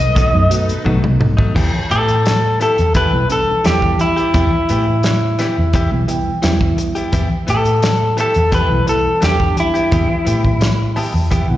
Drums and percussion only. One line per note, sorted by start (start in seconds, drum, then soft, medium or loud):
0.00 closed hi-hat soft
0.16 kick loud
0.16 closed hi-hat medium
0.51 closed hi-hat medium
0.69 closed hi-hat soft
0.86 kick medium
1.04 mid tom medium
1.21 mid tom medium
1.39 kick medium
1.56 kick loud
1.56 crash medium
1.91 closed hi-hat medium
2.08 closed hi-hat soft
2.26 snare loud
2.26 closed hi-hat medium
2.61 closed hi-hat soft
2.78 closed hi-hat soft
2.94 kick medium
2.94 closed hi-hat medium
3.30 closed hi-hat medium
3.64 snare loud
3.64 closed hi-hat medium
3.82 kick medium
3.99 closed hi-hat medium
4.17 closed hi-hat soft
4.34 kick loud
4.34 closed hi-hat medium
4.69 closed hi-hat medium
5.03 snare loud
5.03 closed hi-hat medium
5.39 snare soft
5.39 closed hi-hat medium
5.73 kick medium
5.73 closed hi-hat medium
6.08 closed hi-hat medium
6.43 snare loud
6.43 closed hi-hat medium
6.61 kick medium
6.78 closed hi-hat medium
6.96 closed hi-hat soft
7.13 kick loud
7.13 closed hi-hat medium
7.48 closed hi-hat medium
7.65 closed hi-hat soft
7.82 snare loud
7.82 closed hi-hat medium
8.18 closed hi-hat medium
8.34 closed hi-hat soft
8.52 kick medium
8.52 closed hi-hat medium
8.87 closed hi-hat medium
9.22 snare loud
9.22 closed hi-hat medium
9.40 kick medium
9.57 closed hi-hat medium
9.75 closed hi-hat soft
9.92 kick loud
9.92 closed hi-hat medium
10.27 closed hi-hat medium
10.45 kick medium
10.61 snare loud
10.61 closed hi-hat medium
10.96 open hi-hat medium
11.31 kick medium
11.31 closed hi-hat medium